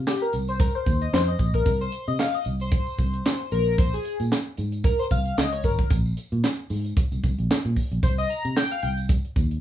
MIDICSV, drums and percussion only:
0, 0, Header, 1, 2, 480
1, 0, Start_track
1, 0, Tempo, 530973
1, 1501, Time_signature, 4, 2, 24, 8
1, 8684, End_track
2, 0, Start_track
2, 0, Title_t, "Drums"
2, 61, Note_on_c, 9, 54, 86
2, 65, Note_on_c, 9, 38, 94
2, 72, Note_on_c, 9, 39, 83
2, 151, Note_off_c, 9, 54, 0
2, 155, Note_off_c, 9, 38, 0
2, 162, Note_off_c, 9, 39, 0
2, 197, Note_on_c, 9, 42, 35
2, 287, Note_off_c, 9, 42, 0
2, 297, Note_on_c, 9, 54, 53
2, 299, Note_on_c, 9, 42, 81
2, 388, Note_off_c, 9, 54, 0
2, 389, Note_off_c, 9, 42, 0
2, 433, Note_on_c, 9, 42, 53
2, 441, Note_on_c, 9, 54, 32
2, 523, Note_off_c, 9, 42, 0
2, 531, Note_off_c, 9, 54, 0
2, 540, Note_on_c, 9, 36, 127
2, 541, Note_on_c, 9, 42, 100
2, 546, Note_on_c, 9, 54, 53
2, 630, Note_off_c, 9, 36, 0
2, 631, Note_off_c, 9, 42, 0
2, 637, Note_off_c, 9, 54, 0
2, 781, Note_on_c, 9, 36, 95
2, 781, Note_on_c, 9, 54, 50
2, 782, Note_on_c, 9, 42, 66
2, 871, Note_off_c, 9, 54, 0
2, 872, Note_off_c, 9, 36, 0
2, 873, Note_off_c, 9, 42, 0
2, 916, Note_on_c, 9, 42, 48
2, 1006, Note_off_c, 9, 42, 0
2, 1026, Note_on_c, 9, 54, 81
2, 1029, Note_on_c, 9, 38, 108
2, 1035, Note_on_c, 9, 39, 92
2, 1116, Note_off_c, 9, 54, 0
2, 1119, Note_off_c, 9, 38, 0
2, 1126, Note_off_c, 9, 39, 0
2, 1156, Note_on_c, 9, 42, 34
2, 1246, Note_off_c, 9, 42, 0
2, 1254, Note_on_c, 9, 42, 63
2, 1259, Note_on_c, 9, 36, 88
2, 1261, Note_on_c, 9, 54, 48
2, 1345, Note_off_c, 9, 42, 0
2, 1349, Note_off_c, 9, 36, 0
2, 1351, Note_off_c, 9, 54, 0
2, 1393, Note_on_c, 9, 36, 83
2, 1395, Note_on_c, 9, 42, 61
2, 1483, Note_off_c, 9, 36, 0
2, 1485, Note_off_c, 9, 42, 0
2, 1499, Note_on_c, 9, 42, 98
2, 1500, Note_on_c, 9, 36, 117
2, 1503, Note_on_c, 9, 54, 58
2, 1590, Note_off_c, 9, 36, 0
2, 1590, Note_off_c, 9, 42, 0
2, 1594, Note_off_c, 9, 54, 0
2, 1633, Note_on_c, 9, 54, 38
2, 1723, Note_off_c, 9, 54, 0
2, 1736, Note_on_c, 9, 54, 59
2, 1739, Note_on_c, 9, 42, 74
2, 1826, Note_off_c, 9, 54, 0
2, 1829, Note_off_c, 9, 42, 0
2, 1875, Note_on_c, 9, 42, 54
2, 1965, Note_off_c, 9, 42, 0
2, 1978, Note_on_c, 9, 54, 88
2, 1983, Note_on_c, 9, 38, 93
2, 1990, Note_on_c, 9, 39, 86
2, 2068, Note_off_c, 9, 54, 0
2, 2073, Note_off_c, 9, 38, 0
2, 2080, Note_off_c, 9, 39, 0
2, 2212, Note_on_c, 9, 54, 55
2, 2215, Note_on_c, 9, 42, 66
2, 2302, Note_off_c, 9, 54, 0
2, 2305, Note_off_c, 9, 42, 0
2, 2349, Note_on_c, 9, 42, 50
2, 2351, Note_on_c, 9, 54, 37
2, 2439, Note_off_c, 9, 42, 0
2, 2442, Note_off_c, 9, 54, 0
2, 2454, Note_on_c, 9, 42, 94
2, 2455, Note_on_c, 9, 54, 53
2, 2457, Note_on_c, 9, 36, 123
2, 2545, Note_off_c, 9, 42, 0
2, 2545, Note_off_c, 9, 54, 0
2, 2547, Note_off_c, 9, 36, 0
2, 2591, Note_on_c, 9, 54, 36
2, 2681, Note_off_c, 9, 54, 0
2, 2696, Note_on_c, 9, 42, 58
2, 2698, Note_on_c, 9, 54, 50
2, 2699, Note_on_c, 9, 36, 85
2, 2787, Note_off_c, 9, 42, 0
2, 2788, Note_off_c, 9, 54, 0
2, 2789, Note_off_c, 9, 36, 0
2, 2834, Note_on_c, 9, 42, 51
2, 2925, Note_off_c, 9, 42, 0
2, 2943, Note_on_c, 9, 54, 96
2, 2946, Note_on_c, 9, 38, 117
2, 2953, Note_on_c, 9, 39, 97
2, 3033, Note_off_c, 9, 54, 0
2, 3037, Note_off_c, 9, 38, 0
2, 3044, Note_off_c, 9, 39, 0
2, 3078, Note_on_c, 9, 42, 35
2, 3168, Note_off_c, 9, 42, 0
2, 3179, Note_on_c, 9, 42, 69
2, 3180, Note_on_c, 9, 54, 51
2, 3269, Note_off_c, 9, 42, 0
2, 3271, Note_off_c, 9, 54, 0
2, 3318, Note_on_c, 9, 42, 56
2, 3409, Note_off_c, 9, 42, 0
2, 3420, Note_on_c, 9, 36, 127
2, 3421, Note_on_c, 9, 42, 94
2, 3424, Note_on_c, 9, 54, 54
2, 3511, Note_off_c, 9, 36, 0
2, 3512, Note_off_c, 9, 42, 0
2, 3514, Note_off_c, 9, 54, 0
2, 3554, Note_on_c, 9, 54, 39
2, 3560, Note_on_c, 9, 42, 37
2, 3644, Note_off_c, 9, 54, 0
2, 3650, Note_off_c, 9, 42, 0
2, 3660, Note_on_c, 9, 54, 58
2, 3661, Note_on_c, 9, 42, 73
2, 3750, Note_off_c, 9, 54, 0
2, 3751, Note_off_c, 9, 42, 0
2, 3794, Note_on_c, 9, 54, 35
2, 3796, Note_on_c, 9, 42, 53
2, 3884, Note_off_c, 9, 54, 0
2, 3886, Note_off_c, 9, 42, 0
2, 3904, Note_on_c, 9, 54, 86
2, 3905, Note_on_c, 9, 38, 97
2, 3912, Note_on_c, 9, 39, 77
2, 3995, Note_off_c, 9, 38, 0
2, 3995, Note_off_c, 9, 54, 0
2, 4002, Note_off_c, 9, 39, 0
2, 4135, Note_on_c, 9, 42, 73
2, 4140, Note_on_c, 9, 54, 53
2, 4225, Note_off_c, 9, 42, 0
2, 4230, Note_off_c, 9, 54, 0
2, 4269, Note_on_c, 9, 42, 46
2, 4275, Note_on_c, 9, 54, 32
2, 4359, Note_off_c, 9, 42, 0
2, 4366, Note_off_c, 9, 54, 0
2, 4375, Note_on_c, 9, 42, 98
2, 4377, Note_on_c, 9, 36, 127
2, 4382, Note_on_c, 9, 54, 55
2, 4465, Note_off_c, 9, 42, 0
2, 4468, Note_off_c, 9, 36, 0
2, 4472, Note_off_c, 9, 54, 0
2, 4518, Note_on_c, 9, 54, 38
2, 4609, Note_off_c, 9, 54, 0
2, 4617, Note_on_c, 9, 42, 57
2, 4619, Note_on_c, 9, 36, 92
2, 4622, Note_on_c, 9, 54, 53
2, 4708, Note_off_c, 9, 42, 0
2, 4709, Note_off_c, 9, 36, 0
2, 4713, Note_off_c, 9, 54, 0
2, 4751, Note_on_c, 9, 42, 50
2, 4842, Note_off_c, 9, 42, 0
2, 4865, Note_on_c, 9, 38, 108
2, 4867, Note_on_c, 9, 54, 88
2, 4872, Note_on_c, 9, 39, 87
2, 4956, Note_off_c, 9, 38, 0
2, 4957, Note_off_c, 9, 54, 0
2, 4963, Note_off_c, 9, 39, 0
2, 5094, Note_on_c, 9, 42, 70
2, 5098, Note_on_c, 9, 36, 75
2, 5100, Note_on_c, 9, 54, 48
2, 5184, Note_off_c, 9, 42, 0
2, 5189, Note_off_c, 9, 36, 0
2, 5191, Note_off_c, 9, 54, 0
2, 5232, Note_on_c, 9, 36, 99
2, 5233, Note_on_c, 9, 42, 60
2, 5322, Note_off_c, 9, 36, 0
2, 5323, Note_off_c, 9, 42, 0
2, 5337, Note_on_c, 9, 42, 93
2, 5339, Note_on_c, 9, 36, 126
2, 5344, Note_on_c, 9, 54, 60
2, 5427, Note_off_c, 9, 42, 0
2, 5429, Note_off_c, 9, 36, 0
2, 5435, Note_off_c, 9, 54, 0
2, 5476, Note_on_c, 9, 54, 34
2, 5566, Note_off_c, 9, 54, 0
2, 5578, Note_on_c, 9, 42, 82
2, 5585, Note_on_c, 9, 54, 58
2, 5669, Note_off_c, 9, 42, 0
2, 5675, Note_off_c, 9, 54, 0
2, 5714, Note_on_c, 9, 42, 52
2, 5805, Note_off_c, 9, 42, 0
2, 5822, Note_on_c, 9, 38, 102
2, 5822, Note_on_c, 9, 54, 89
2, 5829, Note_on_c, 9, 39, 80
2, 5912, Note_off_c, 9, 38, 0
2, 5912, Note_off_c, 9, 54, 0
2, 5919, Note_off_c, 9, 39, 0
2, 6056, Note_on_c, 9, 46, 78
2, 6061, Note_on_c, 9, 54, 56
2, 6146, Note_off_c, 9, 46, 0
2, 6151, Note_off_c, 9, 54, 0
2, 6190, Note_on_c, 9, 42, 53
2, 6202, Note_on_c, 9, 54, 34
2, 6280, Note_off_c, 9, 42, 0
2, 6292, Note_off_c, 9, 54, 0
2, 6299, Note_on_c, 9, 36, 127
2, 6301, Note_on_c, 9, 42, 107
2, 6306, Note_on_c, 9, 54, 56
2, 6389, Note_off_c, 9, 36, 0
2, 6391, Note_off_c, 9, 42, 0
2, 6396, Note_off_c, 9, 54, 0
2, 6436, Note_on_c, 9, 42, 39
2, 6438, Note_on_c, 9, 54, 38
2, 6526, Note_off_c, 9, 42, 0
2, 6529, Note_off_c, 9, 54, 0
2, 6541, Note_on_c, 9, 36, 94
2, 6543, Note_on_c, 9, 42, 59
2, 6544, Note_on_c, 9, 54, 51
2, 6632, Note_off_c, 9, 36, 0
2, 6634, Note_off_c, 9, 42, 0
2, 6635, Note_off_c, 9, 54, 0
2, 6676, Note_on_c, 9, 42, 51
2, 6766, Note_off_c, 9, 42, 0
2, 6786, Note_on_c, 9, 54, 91
2, 6788, Note_on_c, 9, 38, 113
2, 6795, Note_on_c, 9, 39, 100
2, 6876, Note_off_c, 9, 54, 0
2, 6879, Note_off_c, 9, 38, 0
2, 6886, Note_off_c, 9, 39, 0
2, 7017, Note_on_c, 9, 46, 58
2, 7019, Note_on_c, 9, 36, 83
2, 7020, Note_on_c, 9, 54, 50
2, 7107, Note_off_c, 9, 46, 0
2, 7110, Note_off_c, 9, 36, 0
2, 7110, Note_off_c, 9, 54, 0
2, 7158, Note_on_c, 9, 42, 61
2, 7248, Note_off_c, 9, 42, 0
2, 7259, Note_on_c, 9, 36, 115
2, 7260, Note_on_c, 9, 42, 95
2, 7264, Note_on_c, 9, 54, 51
2, 7349, Note_off_c, 9, 36, 0
2, 7350, Note_off_c, 9, 42, 0
2, 7354, Note_off_c, 9, 54, 0
2, 7394, Note_on_c, 9, 42, 36
2, 7396, Note_on_c, 9, 54, 39
2, 7485, Note_off_c, 9, 42, 0
2, 7486, Note_off_c, 9, 54, 0
2, 7498, Note_on_c, 9, 42, 78
2, 7505, Note_on_c, 9, 54, 64
2, 7588, Note_off_c, 9, 42, 0
2, 7595, Note_off_c, 9, 54, 0
2, 7636, Note_on_c, 9, 54, 33
2, 7637, Note_on_c, 9, 42, 57
2, 7727, Note_off_c, 9, 42, 0
2, 7727, Note_off_c, 9, 54, 0
2, 7744, Note_on_c, 9, 38, 103
2, 7745, Note_on_c, 9, 54, 82
2, 7751, Note_on_c, 9, 39, 80
2, 7835, Note_off_c, 9, 38, 0
2, 7835, Note_off_c, 9, 54, 0
2, 7842, Note_off_c, 9, 39, 0
2, 7977, Note_on_c, 9, 42, 78
2, 7981, Note_on_c, 9, 54, 54
2, 8068, Note_off_c, 9, 42, 0
2, 8071, Note_off_c, 9, 54, 0
2, 8113, Note_on_c, 9, 42, 50
2, 8117, Note_on_c, 9, 54, 35
2, 8203, Note_off_c, 9, 42, 0
2, 8207, Note_off_c, 9, 54, 0
2, 8220, Note_on_c, 9, 36, 116
2, 8222, Note_on_c, 9, 42, 100
2, 8224, Note_on_c, 9, 54, 60
2, 8310, Note_off_c, 9, 36, 0
2, 8313, Note_off_c, 9, 42, 0
2, 8314, Note_off_c, 9, 54, 0
2, 8360, Note_on_c, 9, 42, 36
2, 8451, Note_off_c, 9, 42, 0
2, 8462, Note_on_c, 9, 36, 92
2, 8463, Note_on_c, 9, 54, 52
2, 8465, Note_on_c, 9, 42, 63
2, 8553, Note_off_c, 9, 36, 0
2, 8553, Note_off_c, 9, 54, 0
2, 8556, Note_off_c, 9, 42, 0
2, 8599, Note_on_c, 9, 42, 53
2, 8684, Note_off_c, 9, 42, 0
2, 8684, End_track
0, 0, End_of_file